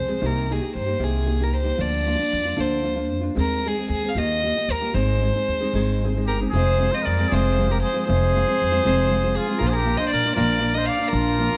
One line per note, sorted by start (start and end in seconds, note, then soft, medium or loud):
0.00 0.13 C#2 medium
0.00 0.27 C5 medium
0.08 0.22 F3 soft
0.08 0.21 G#3 soft
0.08 0.21 C4 soft
0.08 0.21 G#4 soft
0.21 0.57 C2 medium
0.21 0.49 C3 soft
0.21 0.48 D#3 medium
0.21 0.49 A#3 medium
0.21 0.49 D#4 medium
0.21 0.50 G4 medium
0.26 0.53 A#4 medium
0.49 0.62 D#3 soft
0.49 0.62 A#3 soft
0.49 0.61 D#4 medium
0.49 0.61 G4 medium
0.49 0.76 G#4 medium
0.62 0.88 A#3 soft
0.62 0.86 D#4 soft
0.62 0.85 G4 soft
0.75 0.92 G2 medium
0.75 1.05 C5 medium
0.86 0.99 A#3 soft
0.86 0.99 D#4 soft
0.86 0.99 G4 soft
0.99 1.54 C2 medium
0.99 1.28 C3 medium
0.99 1.23 D#3 medium
0.99 1.24 A#3 medium
0.99 1.25 D#4 medium
0.99 1.25 G4 medium
1.04 1.45 G#4 medium
1.25 1.39 D#3 soft
1.25 1.40 A#3 soft
1.25 1.39 D#4 medium
1.25 1.39 G4 medium
1.40 1.64 A#3 soft
1.40 1.64 D#4 soft
1.40 1.63 G4 soft
1.40 1.55 A#4 medium
1.54 1.71 C#2 medium
1.54 1.83 C5 medium
1.64 1.77 A#3 soft
1.64 1.78 D#4 soft
1.64 1.77 G4 soft
1.77 2.14 D2 medium
1.77 2.06 D3 medium
1.77 2.05 F3 medium
1.77 2.06 A#3 medium
1.77 2.06 D4 medium
1.77 2.07 F4 medium
1.82 2.61 D5 medium
2.07 2.20 F3 soft
2.07 2.18 A#3 medium
2.07 2.18 D4 medium
2.07 2.16 F4 medium
2.17 2.45 A#3 soft
2.17 2.45 D4 soft
2.17 2.44 F4 soft
2.33 2.50 F2 medium
2.45 2.55 A#3 soft
2.45 2.56 D4 soft
2.45 2.56 F4 soft
2.56 3.11 D2 medium
2.56 2.85 D3 medium
2.56 2.82 F3 medium
2.56 2.83 A#3 medium
2.56 2.83 D4 medium
2.56 2.83 F4 medium
2.60 3.12 C5 medium
2.83 2.97 F3 medium
2.83 2.96 A#3 soft
2.83 2.96 D4 medium
2.83 2.94 F4 medium
2.96 3.22 A#3 soft
2.96 3.22 D4 soft
2.96 3.20 F4 soft
3.11 3.28 F2 medium
3.21 3.35 A#3 soft
3.21 3.36 D4 soft
3.21 3.35 F4 medium
3.35 3.71 D#2 medium
3.35 3.64 D#3 medium
3.35 3.64 G#3 medium
3.35 3.64 C4 medium
3.35 3.65 G#4 medium
3.39 3.69 A#4 medium
3.65 3.77 D#3 soft
3.65 3.78 G#3 medium
3.65 3.78 C4 medium
3.65 3.77 G#4 medium
3.65 3.90 G#4 medium
3.78 4.04 G#3 soft
3.78 4.03 C4 soft
3.78 4.02 G#4 soft
3.89 4.06 D#2 medium
3.89 4.10 G#4 medium
4.03 4.16 G#3 soft
4.03 4.16 C4 soft
4.03 4.16 G#4 soft
4.08 4.19 F5 medium
4.15 4.50 D#2 medium
4.15 4.42 D#3 medium
4.15 4.43 A#3 medium
4.15 4.43 F4 medium
4.15 4.44 G4 medium
4.15 4.73 D#5 medium
4.43 4.56 D#3 soft
4.43 4.57 A#3 medium
4.43 4.56 F4 medium
4.43 4.55 G4 soft
4.57 4.82 A#3 soft
4.57 4.81 F4 soft
4.57 4.80 G4 soft
4.68 4.85 D#2 medium
4.68 4.95 A#4 medium
4.81 4.93 A#3 soft
4.81 4.95 F4 soft
4.81 4.94 G4 soft
4.93 5.29 G#1 medium
4.93 5.22 G#2 medium
4.93 5.22 D#3 medium
4.93 5.20 G#3 medium
4.93 5.21 C4 medium
4.93 5.21 D#4 medium
4.93 5.21 G#4 medium
4.93 6.27 C5 medium
5.21 5.35 G#3 medium
5.21 5.34 C4 medium
5.21 5.34 D#4 medium
5.21 5.33 G#4 medium
5.35 5.61 G#3 soft
5.35 5.60 C4 soft
5.35 5.60 D#4 soft
5.35 5.59 G#4 soft
5.48 5.65 D#2 medium
5.60 5.73 G#3 soft
5.60 5.74 C4 soft
5.60 5.74 D#4 soft
5.60 5.74 G#4 soft
5.74 6.28 G#1 medium
5.74 6.03 G#2 medium
5.74 6.03 D#3 medium
5.74 6.03 G#3 medium
5.74 6.03 C4 medium
5.74 6.03 D#4 medium
5.74 6.03 G#4 medium
6.04 6.16 G#3 medium
6.04 6.16 C4 medium
6.04 6.15 D#4 medium
6.04 6.15 G#4 medium
6.17 6.41 G#3 soft
6.17 6.40 C4 soft
6.17 6.40 D#4 soft
6.17 6.39 G#4 soft
6.25 6.45 G1 medium
6.25 6.37 G4 soft
6.25 6.39 A#4 medium
6.40 6.53 G#3 soft
6.40 6.54 C4 soft
6.40 6.54 D#4 medium
6.40 6.53 G#4 medium
6.50 6.88 F1 medium
6.50 6.93 G#4 medium
6.54 6.82 F2 medium
6.54 6.82 C3 medium
6.54 6.79 F3 medium
6.54 6.79 G#3 medium
6.54 6.80 C4 medium
6.54 6.81 F4 medium
6.54 6.96 C5 medium
6.80 6.93 F3 soft
6.80 6.93 G#3 medium
6.80 6.92 C4 medium
6.80 6.91 F4 medium
6.92 7.19 F3 soft
6.92 7.19 G#3 soft
6.92 7.18 C4 soft
6.92 7.17 F4 soft
6.92 7.04 C5 medium
6.92 7.07 D#5 medium
7.03 7.30 A#4 medium
7.03 7.34 D5 medium
7.07 7.23 F2 medium
7.19 7.30 F3 soft
7.19 7.31 G#3 soft
7.19 7.30 C4 soft
7.19 7.31 F4 soft
7.28 7.59 F2 medium
7.28 7.59 C3 medium
7.28 7.58 F3 medium
7.28 7.58 G#3 medium
7.28 7.59 C4 medium
7.28 7.71 G#4 medium
7.32 7.82 F1 medium
7.32 7.59 F4 medium
7.32 7.73 C5 medium
7.59 7.70 F3 medium
7.59 7.70 G#3 medium
7.59 7.69 C4 medium
7.59 7.68 F4 medium
7.70 7.95 F3 soft
7.70 7.94 G#3 soft
7.70 7.93 C4 soft
7.70 7.93 F4 soft
7.70 7.80 G4 medium
7.70 7.82 A#4 medium
7.81 8.05 G#4 medium
7.81 8.07 C5 medium
7.94 8.07 F3 soft
7.94 8.07 G#3 soft
7.94 8.06 C4 medium
7.94 8.07 F4 soft
8.07 8.43 F1 medium
8.07 8.35 F2 medium
8.07 8.35 C3 medium
8.07 8.34 F3 medium
8.07 8.34 G#3 medium
8.07 8.35 C4 medium
8.07 8.36 F4 medium
8.07 9.38 G#4 medium
8.07 9.36 C5 loud
8.35 8.48 F3 medium
8.35 8.48 G#3 soft
8.35 8.47 C4 medium
8.35 8.47 F4 medium
8.48 8.73 F3 soft
8.48 8.72 G#3 soft
8.48 8.72 C4 soft
8.48 8.71 F4 soft
8.62 8.78 F2 medium
8.72 8.84 F3 soft
8.72 8.84 G#3 soft
8.72 8.84 C4 medium
8.72 8.84 F4 soft
8.84 9.36 F1 medium
8.84 9.12 F2 medium
8.84 9.12 C3 medium
8.84 9.09 F3 medium
8.84 9.10 G#3 medium
8.84 9.10 C4 medium
8.84 9.10 F4 loud
9.10 9.24 F3 medium
9.10 9.24 G#3 medium
9.10 9.24 C4 medium
9.10 9.23 F4 medium
9.24 9.49 F3 soft
9.24 9.48 G#3 soft
9.24 9.47 C4 soft
9.24 9.47 F4 soft
9.35 9.60 F4 medium
9.35 9.60 G#4 medium
9.48 9.58 F3 soft
9.48 9.59 G#3 soft
9.48 9.60 C4 soft
9.48 9.59 F4 medium
9.58 9.95 A#1 medium
9.58 9.87 A#2 medium
9.58 9.84 F3 medium
9.58 9.84 A#3 medium
9.58 9.85 D4 medium
9.58 9.86 F4 medium
9.58 9.71 F4 medium
9.58 9.68 A#4 medium
9.66 9.78 G#4 medium
9.66 9.74 C5 medium
9.72 9.98 A#4 medium
9.76 10.01 G4 medium
9.85 9.99 F3 medium
9.85 9.98 A#3 medium
9.85 9.98 D4 medium
9.85 9.97 F4 medium
9.97 10.25 A#3 soft
9.97 10.24 D4 soft
9.97 10.24 F4 soft
9.97 10.12 C5 medium
9.97 10.09 D#5 medium
10.09 10.29 A#2 medium
10.09 10.35 A#4 medium
10.09 10.34 D5 medium
10.25 10.35 A#3 soft
10.25 10.35 D4 soft
10.25 10.36 F4 soft
10.35 10.87 A#1 medium
10.35 10.63 A#2 medium
10.35 10.60 F3 medium
10.35 10.60 A#3 medium
10.35 10.60 D4 medium
10.35 10.62 F4 medium
10.35 10.79 A#4 medium
10.35 10.75 D5 medium
10.61 10.75 F3 medium
10.61 10.75 A#3 medium
10.61 10.74 D4 medium
10.61 10.73 F4 medium
10.74 11.00 A#3 soft
10.74 10.99 D4 soft
10.74 10.98 F4 soft
10.74 10.90 C5 medium
10.74 10.87 D#5 medium
10.86 11.14 D5 medium
10.86 11.10 F5 medium
10.99 11.11 A#3 soft
10.99 11.11 D4 soft
10.99 11.10 F4 soft
11.11 11.47 A#1 medium
11.11 11.39 A#2 medium
11.11 11.39 F3 medium
11.11 11.39 A#3 medium
11.11 11.39 D4 medium
11.11 11.40 F4 medium
11.11 11.57 A#4 loud
11.16 11.57 F4 medium
11.40 11.53 F3 soft
11.40 11.51 A#3 medium
11.40 11.51 D4 medium
11.40 11.51 F4 medium
11.52 11.57 A#3 soft
11.52 11.57 D4 soft